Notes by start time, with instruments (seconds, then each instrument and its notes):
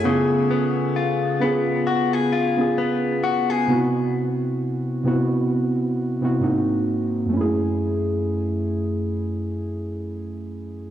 Already playing: clean electric guitar A3 E4 G#4, synth keys A4
0.04 clean electric guitar C#3, synth keys B3 C#4 F4 G#4
0.51 clean electric guitar B3
0.96 clean electric guitar F4
1.40 synth keys B3 C#4 F4 G#4, clean electric guitar B3
1.87 clean electric guitar F#4
2.13 clean electric guitar G#4
2.33 clean electric guitar F4
2.57 synth keys B3 C#4 F4 G#4
2.78 clean electric guitar B3
3.24 clean electric guitar F#4
3.50 clean electric guitar G#4
3.67 synth keys C3 B3 C4 E4 F#4
5.04 synth keys C3 B3 C4 E4 F#4
6.21 synth keys C3 B3 C4 E4 F#4
6.40 synth keys G#2 A#3 C4 D#4 F#4
7.25 synth keys F#2 A3
7.33 synth keys C#4 E4
7.41 synth keys G#4